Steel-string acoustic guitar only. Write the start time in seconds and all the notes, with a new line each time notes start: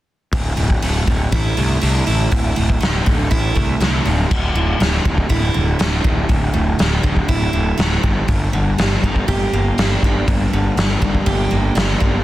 0.33 D2
0.57 A2
0.82 A3
1.07 D3
1.32 E4
1.57 A3
1.81 D3
2.07 E4
2.32 D2
2.56 A2
2.81 A3
3.06 D3
3.31 E4
3.55 A3
3.80 D3
4.06 D2
4.31 D2
4.55 A2
4.80 A2
5.05 D3
5.30 E4
5.54 D3
5.79 A3
6.04 D3
6.29 D2
6.54 A2
6.79 A2
7.03 D3
7.28 E4
7.53 D3
7.78 A3
8.03 G2
8.28 G2
8.53 D3
8.78 G3
9.04 A#3
9.28 G4
9.53 A#3
9.79 D4
10.04 A#3
10.28 G2
10.53 D3
10.77 G3
11.02 A#3
11.26 G4
11.51 A#3
11.75 D4
12.00 A#3